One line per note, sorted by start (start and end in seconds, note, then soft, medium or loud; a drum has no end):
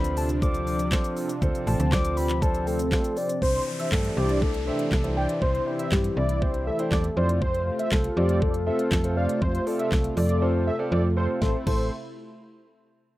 0.00 0.96 D2 medium
0.00 3.38 C3 medium
0.00 3.38 F3 medium
0.00 0.27 C4 medium
0.00 0.27 D4 medium
0.00 1.38 D4 medium
0.00 0.27 F4 medium
0.00 0.27 A4 medium
0.00 0.27 C5 medium
0.00 0.17 B5 medium
0.04 closed hi-hat medium
0.04 shaker medium
0.17 0.29 A5 loud
0.17 open hi-hat medium
0.17 shaker medium
0.29 closed hi-hat medium
0.29 shaker medium
0.42 0.77 C4 medium
0.42 0.77 D4 medium
0.42 0.77 F4 medium
0.42 0.77 A4 medium
0.42 0.77 C5 medium
0.42 1.13 D6 loud
0.42 kick loud
0.42 shaker medium
0.54 closed hi-hat medium
0.54 shaker medium
0.67 open hi-hat medium
0.67 shaker soft
0.79 closed hi-hat medium
0.79 shaker medium
0.92 1.27 C4 medium
0.92 1.27 D4 medium
0.92 1.27 F4 medium
0.92 1.27 A4 medium
0.92 1.27 C5 loud
0.92 kick loud
0.92 snare medium
0.92 clap loud
0.92 shaker medium
1.04 closed hi-hat medium
1.04 shaker medium
1.17 open hi-hat medium
1.17 shaker medium
1.29 closed hi-hat medium
1.29 shaker loud
1.42 1.51 D2 loud
1.42 1.77 C4 medium
1.42 3.40 C4 medium
1.42 1.77 D4 medium
1.42 1.77 F4 medium
1.42 1.77 A4 medium
1.42 1.77 C5 loud
1.42 kick loud
1.42 shaker medium
1.55 closed hi-hat soft
1.55 shaker soft
1.67 1.76 A1 loud
1.67 1.93 A5 loud
1.67 open hi-hat medium
1.67 shaker medium
1.80 2.96 D2 medium
1.80 closed hi-hat medium
1.80 shaker medium
1.92 2.27 C4 medium
1.92 2.27 D4 medium
1.92 2.27 F4 medium
1.92 2.27 A4 medium
1.92 2.27 C5 medium
1.92 2.18 D6 loud
1.92 kick loud
1.92 snare medium
1.92 clap loud
1.92 shaker medium
2.05 closed hi-hat medium
2.05 shaker medium
2.17 2.44 B5 loud
2.17 open hi-hat medium
2.17 shaker medium
2.29 clap medium
2.29 closed hi-hat medium
2.29 shaker medium
2.42 2.77 C4 medium
2.42 2.77 D4 medium
2.42 2.77 F4 medium
2.42 2.77 A4 medium
2.42 2.77 C5 medium
2.42 2.67 A5 medium
2.42 kick loud
2.42 shaker medium
2.54 closed hi-hat medium
2.54 shaker medium
2.67 3.19 A4 loud
2.67 open hi-hat medium
2.67 shaker medium
2.79 closed hi-hat medium
2.79 shaker medium
2.92 3.27 C4 medium
2.92 3.27 D4 medium
2.92 3.27 F4 medium
2.92 3.27 A4 medium
2.92 3.27 C5 medium
2.92 kick loud
2.92 snare medium
2.92 clap loud
2.92 shaker medium
3.04 closed hi-hat medium
3.04 shaker medium
3.17 3.42 D5 loud
3.17 open hi-hat medium
3.17 shaker medium
3.29 closed hi-hat medium
3.29 shaker medium
3.42 3.60 C2 loud
3.42 7.13 C3 medium
3.42 7.13 E3 medium
3.42 5.40 D4 medium
3.42 3.62 C5 loud
3.42 3.65 C5 loud
3.42 kick loud
3.42 downlifter medium
3.55 closed hi-hat soft
3.67 3.94 C5 loud
3.79 3.89 E5 medium
3.79 closed hi-hat medium
3.92 4.10 G2 medium
3.92 4.09 D4 medium
3.92 4.09 E4 medium
3.92 4.10 G4 medium
3.92 4.19 A4 loud
3.92 4.10 C5 medium
3.92 kick loud
3.92 snare medium
3.92 clap loud
4.04 closed hi-hat medium
4.17 4.71 C2 loud
4.17 4.52 D4 medium
4.17 4.52 E4 medium
4.17 4.52 G4 medium
4.17 4.44 G4 medium
4.17 4.52 C5 medium
4.17 4.52 D5 medium
4.29 closed hi-hat medium
4.42 4.67 A4 medium
4.42 kick loud
4.54 closed hi-hat soft
4.66 4.93 D4 medium
4.66 4.93 E4 medium
4.66 4.93 G4 medium
4.66 5.19 A4 loud
4.66 4.93 C5 medium
4.66 4.77 E5 medium
4.79 closed hi-hat medium
4.92 5.28 C2 loud
4.92 kick loud
4.92 snare medium
4.92 clap loud
5.04 5.48 D4 medium
5.04 5.48 E4 medium
5.04 5.48 G4 medium
5.04 5.48 C5 medium
5.04 closed hi-hat medium
5.17 5.44 D5 loud
5.17 5.27 G5 medium
5.29 closed hi-hat medium
5.42 5.60 C2 loud
5.42 7.15 E4 medium
5.42 5.62 C5 loud
5.42 5.67 C5 loud
5.42 kick loud
5.55 closed hi-hat soft
5.66 6.20 D4 medium
5.66 6.20 E4 medium
5.66 6.20 G4 medium
5.66 6.20 C5 medium
5.66 5.94 C5 loud
5.79 5.89 E5 medium
5.79 closed hi-hat medium
5.92 6.10 G2 medium
5.92 6.19 G4 medium
5.92 kick loud
5.92 snare medium
5.92 clap loud
6.04 closed hi-hat medium
6.17 6.71 C2 loud
6.17 6.52 D5 medium
6.17 6.43 D5 loud
6.29 closed hi-hat medium
6.41 6.68 D4 medium
6.41 6.68 E4 medium
6.41 6.68 G4 medium
6.41 6.68 C5 medium
6.41 6.69 C5 loud
6.41 kick loud
6.54 closed hi-hat medium
6.67 7.18 A4 loud
6.67 6.77 E5 medium
6.79 7.06 D4 medium
6.79 7.06 E4 medium
6.79 7.06 G4 medium
6.79 7.06 C5 loud
6.79 closed hi-hat medium
6.92 7.10 E2 loud
6.92 7.02 D5 medium
6.92 kick loud
6.92 snare medium
6.92 clap loud
7.04 closed hi-hat medium
7.17 7.71 F2 loud
7.17 11.38 C3 medium
7.17 11.38 A3 medium
7.17 7.77 C4 medium
7.17 7.77 F4 medium
7.17 11.38 F4 medium
7.17 7.77 A4 medium
7.17 7.27 C5 loud
7.17 7.77 C5 medium
7.17 7.44 D5 loud
7.29 closed hi-hat medium
7.42 7.62 C5 loud
7.42 7.66 C5 loud
7.42 kick loud
7.54 closed hi-hat soft
7.67 7.93 C5 loud
7.79 7.89 E5 medium
7.79 closed hi-hat medium
7.92 8.10 C2 medium
7.92 8.09 C4 medium
7.92 8.09 F4 medium
7.92 8.18 A4 medium
7.92 8.10 A4 medium
7.92 8.10 C5 medium
7.92 kick loud
7.92 snare medium
7.92 clap loud
8.04 closed hi-hat medium
8.16 8.71 F2 loud
8.16 8.52 C4 medium
8.16 8.52 F4 medium
8.16 8.41 G4 medium
8.16 8.52 A4 medium
8.16 8.52 C5 medium
8.16 8.52 D5 medium
8.29 closed hi-hat medium
8.42 8.65 A4 medium
8.42 kick loud
8.54 closed hi-hat soft
8.66 8.93 C4 medium
8.66 8.93 F4 medium
8.66 8.93 A4 medium
8.66 9.18 A4 medium
8.66 8.93 C5 medium
8.66 8.77 E5 medium
8.79 closed hi-hat medium
8.92 9.28 F2 loud
8.92 kick loud
8.92 snare medium
8.92 clap loud
9.04 9.48 C4 medium
9.04 9.48 F4 medium
9.04 9.48 A4 medium
9.04 9.48 C5 medium
9.04 closed hi-hat medium
9.17 9.43 D5 medium
9.17 9.27 F5 medium
9.29 closed hi-hat medium
9.42 9.60 F2 loud
9.42 9.68 C5 loud
9.42 9.62 C5 loud
9.42 kick loud
9.55 closed hi-hat soft
9.66 10.20 C4 medium
9.66 10.20 F4 medium
9.66 10.20 A4 medium
9.66 9.79 A4 medium
9.66 10.20 D5 medium
9.66 open hi-hat medium
9.79 10.14 A4 medium
9.79 9.89 E5 medium
9.79 closed hi-hat medium
9.92 10.10 C2 medium
9.92 kick loud
9.92 snare medium
9.92 clap loud
10.04 closed hi-hat medium
10.17 10.71 F2 loud
10.17 11.13 A4 medium
10.17 10.52 D5 medium
10.17 open hi-hat medium
10.29 closed hi-hat medium
10.42 10.68 C4 medium
10.42 10.68 F4 medium
10.42 10.68 A4 medium
10.42 10.68 C5 loud
10.67 10.77 E5 medium
10.79 11.06 C4 medium
10.79 11.06 F4 medium
10.79 11.06 A4 medium
10.79 11.06 D5 loud
10.92 11.28 F2 loud
10.92 11.02 D5 medium
11.17 11.40 C4 medium
11.17 11.42 F4 medium
11.17 11.40 A4 medium
11.17 11.40 C5 medium
11.17 11.27 C5 medium
11.42 11.56 A1 loud
11.42 11.65 C3 medium
11.42 11.65 A3 medium
11.42 11.56 C4 medium
11.42 11.56 E4 medium
11.42 11.65 E4 medium
11.42 11.56 A4 medium
11.42 11.56 C5 medium
11.42 kick loud
11.42 snare medium
11.67 11.90 A1 loud
11.67 11.90 C4 medium
11.67 11.90 E4 medium
11.67 11.90 A4 medium
11.67 11.90 C5 medium
11.67 kick loud
11.67 crash medium